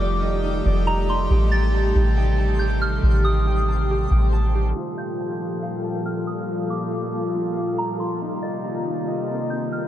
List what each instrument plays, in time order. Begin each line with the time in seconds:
Already playing: 808-style bass F1, analog synth pad D#3 F3 G3 A3 G4, synth texture A3 D#4 G4 D#5, harp D#4 D#5, synth bell D6
0.01 harp D5
0.23 harp D#5
0.44 harp D#4
0.66 808-style bass F1, harp D5
0.87 harp D#5, synth bell A#5
1.09 harp D#4, synth bell C6
1.31 808-style bass A1, analog synth pad C3 D#3, synth texture A3 C5, harp G4
1.52 harp G5, synth bell A6
1.74 harp A5
1.95 808-style bass A1, harp G4
2.17 harp G5
2.38 harp A5
2.59 harp G4, synth bell G6
2.82 synth bell F6
3.03 808-style bass A1
3.25 harp G4, synth bell D#6
3.47 harp G5
3.68 harp A5
3.91 harp G4
4.11 808-style bass A1, harp G5
4.33 harp A5
4.55 harp G4
4.76 analog synth pad A#2 F3 G3 F4 A4, synth texture A#3 G4 A4 F5, harp F4
4.97 harp F5, synth bell G6
5.20 harp A5
5.41 harp F4
5.62 harp F5
5.84 harp A5
6.05 harp F4, synth bell F6
6.27 synth bell D#6
6.70 harp F4, synth bell D6
6.92 harp F5
7.14 harp A5
7.34 harp F4
7.57 harp F5
7.78 harp A5, synth bell A#5
8.00 harp F4, synth bell C6
8.21 analog synth pad C3 D#3 A#3, synth texture C4 D#4 A#4 D#5, harp D#4
8.42 harp D#5, synth bell A6
8.64 harp A#5
8.86 harp D#4
9.08 harp D#5
9.29 harp A#5
9.50 harp D#4, synth bell G6
9.72 synth bell F6